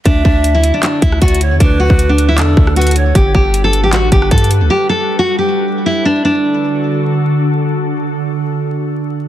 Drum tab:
HH |x-----------------------x-----------x-----------x-----------x-----------x---x---x---x-----------|x-----------------------x-----------x-----------x-----------------------x--x--x--x--x-----------|x-----------------------x-----------x-----------x-----------x-----------x---x---x---x-----------|------------------------------------------------------------------------------------------------|
CP |------------------------------------------------x-----------------------------------------------|------------------------------------------------x-----------------------------------------------|------------------------------------------------x-----------------------------------------------|------------------------------------------------------------------------------------------------|
SD |------------------------------------------------------------------r-----------------------------|------------------------------------------------------------------r-----------------------------|------------------------------------------------------------------r-----------------------------|------------------------------------------------------------------------------------------------|
BD |o-----------o-----------------------------------------------o-----------o-----------------------|o-----------------o-----------------------------------------o-----------------------------------|o-----------o-----------------------------------------------o-----------o-----------------------|------------------------------------------------------------------------------------------------|

HH |------------------------------------------------------------------------------------------------|------------------------------------------------------------------------------------------------|
CP |------------------------------------------------------------------------------------------------|------------------------------------------------------------------------------------------------|
SD |------------------------------------------------------------------------------------------------|------------------------------------------------------------------------------------------------|
BD |------------------------------------------------------------------------------------------------|------------------------------------------------------------------------------------------------|